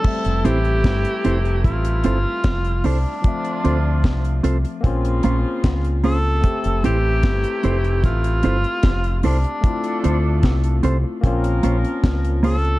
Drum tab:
CC |x---------------|----------------|----------------|----------------|
HH |-xxxxxxxxxx-xxo-|xxx-xxxxxxx-xxo-|xxx-xxxxxxxxxxox|xxx-xxx-xxxxxxox|
SD |----o-------o---|----o-------o---|----o-------o---|----o-------o---|
BD |o---o---o---o---|o---o---o---o---|o---o---o---o---|o---o---o---o---|